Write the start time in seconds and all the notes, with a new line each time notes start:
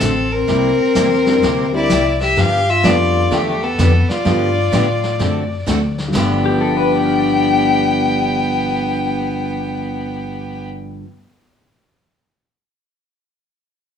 Already playing: C4 A4
0.00 A1 D3 A3 C4 F#4 A4, snare, hi-hat pedal
0.32 C4 A#4
0.48 C2 C3 G3 A#3 E4 G4, brush sweep, snare
0.79 muted upright bass stroke
0.95 E2 C3 G3 A#3 E4 G4, snare, hi-hat pedal
1.26 G3 A#3 C4 D4 E4, snare
1.42 D2 C3 G3 A#3 E4 G4, brush sweep, snare
1.72 G3 A#3 C4 D4 E4 G4 D5
1.89 C2 C3 G3 A#3 E4 G4, snare, hi-hat pedal
2.21 G4 E5, snare
2.36 G2 D3 F3 B3 D4 G4 F5, brush sweep, snare
2.70 F4 E5
2.83 F2 D3 F3 G3 A3 B3 D4 F4 G4 D5, snare, hi-hat pedal
3.31 E2 D3 F3 A3 B3 D4 G4, brush sweep, snare
3.63 B3 A4
3.78 F2 D3 F3 B3 D4 G4, snare, hi-hat pedal
4.09 F4 D5, muted upright bass stroke, snare
4.25 G2 D3 F3 G3 A3 B3 D4 F4 G4, brush sweep, snare
4.72 A2 D3 F3 B3 D4 G4, snare, hi-hat pedal
5.03 snare
5.19 F#2 D3 A3 C4 F#4 A4, brush sweep, snare
5.66 D2 D3 A3 C4 F#4 A4, snare, hi-hat pedal
5.98 snare
6.08 G2 G3
6.13 G1 G2 D3 F3 A3 B3 D4 G4 G5, snare, splash
6.19 F4
6.46 G4
6.61 A4
6.68 D5
6.77 B4 F5
6.86 A5
6.92 G4 D6
7.06 F6
7.18 A6